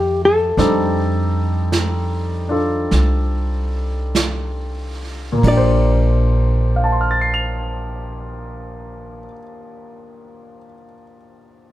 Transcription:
Already playing: upright bass F2, grand piano A3 C4 D4 F4 G4 A4, hollow-body jazz guitar G4
0.25 hollow-body jazz guitar A4
0.57 upright bass F2, grand piano G3 C4 D4 D#4 A4, brush sweep, snare
1.72 brush sweep, snare, hi-hat pedal
2.49 grand piano D4 F4 A4
2.68 hollow-body jazz guitar G4
2.91 upright bass C2, brush sweep, snare
4.15 brush sweep, snare, hi-hat pedal
5.32 grand piano A#2
5.38 grand piano A#3
5.43 upright bass A#1, grand piano D4, kick, ride
5.48 grand piano G4, hollow-body jazz guitar D5
5.57 grand piano C5
6.76 grand piano F5
6.84 grand piano A5
6.92 grand piano C6
7.01 grand piano F6
7.11 grand piano A6
7.21 grand piano C7
7.34 grand piano F7

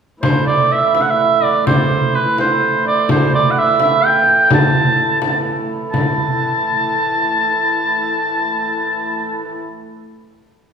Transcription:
0.23 hurdy-gurdy A2 E3, shawm C5, frame drum
0.47 shawm D5
0.71 shawm E5, frame drum
0.95 shawm E5, frame drum
1.01 shawm F#5
1.10 shawm E5
1.43 shawm D5, frame drum
1.67 shawm C5, frame drum
2.14 shawm B4, frame drum
2.38 shawm C5, frame drum
2.86 shawm D5, frame drum
3.09 shawm C5, frame drum
3.35 shawm D5
3.51 shawm F#5
3.58 shawm E5
3.80 shawm E5, frame drum
4.05 shawm G5
4.28 frame drum
4.51 shawm A5, frame drum
4.99 frame drum
5.22 frame drum
5.47 frame drum
5.92 hurdy-gurdy A2 E3, shawm A5, frame drum

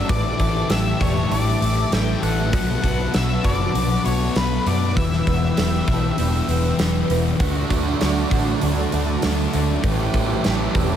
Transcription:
Already playing: twelve-string acoustic guitar A3, analog synth pad A5
0.08 fingered electric bass A1, distorted electric guitar A2 E3 A3, twelve-string acoustic guitar E3, analog synth pad G4 E5, lead electric guitar D5, kick, open hi-hat
0.38 fingered electric bass A1, distorted electric guitar E3 A3, twelve-string acoustic guitar A3, kick, open hi-hat
0.69 fingered electric bass A1, distorted electric guitar A2 E3 A3, twelve-string acoustic guitar G4, lead electric guitar E5, snare, open hi-hat
0.99 fingered electric bass E1, distorted electric guitar E3 A3, twelve-string acoustic guitar D4, lead electric guitar C#5, kick, open hi-hat
1.30 fingered electric bass A1, distorted electric guitar A2 E3 A3, twelve-string acoustic guitar E3, lead electric guitar D5, open hi-hat
1.60 fingered electric bass A1, distorted electric guitar E3 A3, twelve-string acoustic guitar A3, open hi-hat
1.91 fingered electric bass A1, distorted electric guitar A2 E3 A3, twelve-string acoustic guitar E3, lead electric guitar G5, snare, open hi-hat
2.21 fingered electric bass A1, distorted electric guitar E3 A3, twelve-string acoustic guitar A3, lead electric guitar F#5, open hi-hat
2.51 fingered electric bass B1, distorted electric guitar B2 F#3 B3, twelve-string acoustic guitar A3, analog synth pad F#4 B4, kick, open hi-hat
2.81 fingered electric bass B1, distorted electric guitar F#3 B3, twelve-string acoustic guitar A3, kick, open hi-hat
3.12 fingered electric bass B1, distorted electric guitar B2 F#3 B3, twelve-string acoustic guitar F#4, lead electric guitar E5, snare, open hi-hat
3.42 fingered electric bass F#1, distorted electric guitar F#3 B3, twelve-string acoustic guitar D4, lead electric guitar D5, kick, open hi-hat
3.73 fingered electric bass B1, distorted electric guitar B2 F#3 B3, twelve-string acoustic guitar A3, open hi-hat
4.03 fingered electric bass B1, distorted electric guitar F#3 B3, twelve-string acoustic guitar A3, lead electric guitar C#5, open hi-hat
4.34 fingered electric bass B1, distorted electric guitar B2 F#3 B3, twelve-string acoustic guitar A3, lead electric guitar B4, snare, open hi-hat
4.65 fingered electric bass F#2, distorted electric guitar F#3 B3, twelve-string acoustic guitar A3, lead electric guitar D5, open hi-hat
4.95 fingered electric bass E1, distorted electric guitar E2 B2 E3, twelve-string acoustic guitar E3, analog synth pad E4 G5, lead electric guitar E5, kick, open hi-hat
5.13 snare
5.26 fingered electric bass E1, distorted electric guitar B2 E3, twelve-string acoustic guitar B3, kick, open hi-hat
5.56 fingered electric bass E1, distorted electric guitar E2 B2 E3, twelve-string acoustic guitar G4, snare, open hi-hat
5.87 fingered electric bass B1, distorted electric guitar B2 E3, twelve-string acoustic guitar D4, kick, open hi-hat
6.18 fingered electric bass E1, distorted electric guitar E2 B2 E3, twelve-string acoustic guitar E3, open hi-hat
6.47 fingered electric bass E1, distorted electric guitar B2 E3, twelve-string acoustic guitar B3, open hi-hat
6.78 fingered electric bass E1, distorted electric guitar E2 B2 E3, twelve-string acoustic guitar E3, snare, open hi-hat
7.08 fingered electric bass E1, distorted electric guitar B2 E3, twelve-string acoustic guitar B3, open hi-hat
7.39 fingered electric bass D2, distorted electric guitar D3 A3 D4, twelve-string acoustic guitar F#3, analog synth pad F#4 D5 A5 D6, overdriven electric guitar F#4, kick, open hi-hat
7.70 fingered electric bass D2, twelve-string acoustic guitar A3, distorted electric guitar A3 D4, kick, open hi-hat
8.00 fingered electric bass D2, distorted electric guitar D3 A3 D4, twelve-string acoustic guitar F#4, snare, open hi-hat
8.30 fingered electric bass A1, distorted electric guitar A3 D4, kick, open hi-hat
8.61 fingered electric bass D2, distorted electric guitar D3 A3 D4, twelve-string acoustic guitar F#3, open hi-hat
8.92 fingered electric bass D2, twelve-string acoustic guitar A3, distorted electric guitar A3 D4, open hi-hat
9.22 fingered electric bass D2, distorted electric guitar D3 A3 D4, twelve-string acoustic guitar F#3, snare, open hi-hat
9.53 fingered electric bass D2, twelve-string acoustic guitar A3, distorted electric guitar A3 D4, open hi-hat
9.83 fingered electric bass A1, distorted electric guitar A2 E3 A3, twelve-string acoustic guitar E3, overdriven electric guitar G3 C#4 G4, analog synth pad G4 E5, kick, open hi-hat
10.13 fingered electric bass A1, distorted electric guitar E3 A3, twelve-string acoustic guitar A3, kick, open hi-hat
10.43 fingered electric bass A1, distorted electric guitar A2 E3 A3, twelve-string acoustic guitar G4, snare, open hi-hat
10.74 fingered electric bass E1, distorted electric guitar E3 A3, kick, open hi-hat

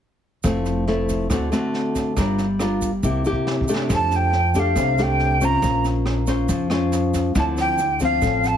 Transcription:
0.44 upright bass F1, nylon-string guitar F3 A3 C4 E4, kick, cross-stick, snare, shaker
0.65 snare, shaker
0.87 nylon-string guitar A3 C4 E4, snare
1.09 kick, snare, shaker
1.30 upright bass D2, nylon-string guitar D3 A3 C4 F#4, kick, cross-stick, snare, shaker
1.52 nylon-string guitar A3 C4 F#4, snare, shaker
1.74 snare
1.95 kick, snare, shaker
2.17 upright bass G1, nylon-string guitar G3 D4 F4 A#4, kick, cross-stick, snare, shaker
2.38 snare, shaker
2.59 nylon-string guitar D4 F4 A#4, cross-stick, snare, shaker
2.81 kick, snare, shaker
3.03 upright bass C2, nylon-string guitar C3 A#3 E4 G4, kick, shaker
3.25 nylon-string guitar A#3 E4 G4, shaker
3.32 kick
3.47 snare
3.61 kick
3.68 nylon-string guitar A3 D4 G4, shaker
3.76 snare
3.89 upright bass F2, nylon-string guitar F3, kick, cross-stick, snare, shaker
3.94 flute A5
4.11 snare, shaker
4.15 flute G5
4.33 snare
4.54 nylon-string guitar A3 D4 G4, kick, snare, shaker
4.59 flute F5
4.76 upright bass C2, nylon-string guitar C3, kick, cross-stick, snare, shaker
4.98 nylon-string guitar A3 D4 G4, flute G5, snare, shaker
5.20 snare
5.41 nylon-string guitar C#4 F4 C5, flute A#5, kick, snare, shaker
5.62 upright bass A#1, nylon-string guitar A#3, kick, cross-stick, snare, shaker
5.85 snare, shaker
6.06 cross-stick, snare
6.27 nylon-string guitar C#4 F4 C5, kick, snare, shaker
6.48 upright bass F2, nylon-string guitar F3, kick, snare, shaker
6.70 nylon-string guitar C#4 F4 C5, cross-stick, snare, shaker
6.92 snare, shaker
7.14 kick, snare, shaker
7.35 upright bass D2, nylon-string guitar D3 F3 C4 E4, flute A5, kick, cross-stick, snare, shaker
7.57 flute G5, snare, shaker
7.78 snare, shaker
8.00 nylon-string guitar F3 C4, flute F5, kick, snare, shaker
8.22 upright bass A1, nylon-string guitar A2, kick, cross-stick, snare, shaker
8.44 flute A5, snare, shaker

